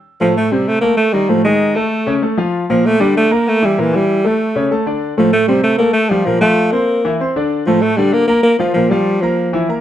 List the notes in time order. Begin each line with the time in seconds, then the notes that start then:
0.21 A2 F3 A3 A4
0.37 A3
0.52 C3 G3 C4 C5
0.68 A3
0.81 A3 A#3 A4 A5
0.97 A3
1.13 D#3 G3 D#4 D#5
1.29 A2 F3 A3 A4
1.44 D#3 G#3 D#4 D#5
1.75 A3 A4 A5
2.06 C#3 C#4 C#5
2.22 A3 A4 A5
2.37 F3 F4 F5
2.70 A#2 F3 A#3 A#4
2.86 A3
3.00 D3 G3 D4 D5
3.17 A3
3.31 A#3 A#4 A#5
3.48 A3
3.62 E3 G3 E4 E5
3.78 A#2 E3 A#3 A#4
3.93 E3 G3 E4 E5
4.25 A3 A4 A5
4.56 C#3 C#4 C#5
4.71 A3 A4 A5
4.86 D3 D4 D5
5.17 A2 F3 A3 A4
5.33 A3
5.48 C3 G3 C4 C5
5.63 A3
5.78 A3 A#3 A4 A5
5.93 A3
6.09 F3 G3 F4 F5
6.25 A#2 F3 A#3 A#4
6.41 F3 A3 F4 F5
6.72 A#3 C4 C5 C6
7.05 E3 E4 E5
7.20 C4 C5 C6
7.36 D3 D4 D5
7.66 A2 F3 A3 A4
7.82 A3
7.97 D3 G3 D4 D5
8.13 A#3
8.28 A#3 A#4 A#5
8.43 A#3
8.59 F3 F4 F5
8.74 A#2 F3 A#3 A#4
8.89 F3 G3 F4 F5
9.21 F3 A#3 A#4 A#5
9.53 E3 E4 E5
9.69 A#3 A#4 A#5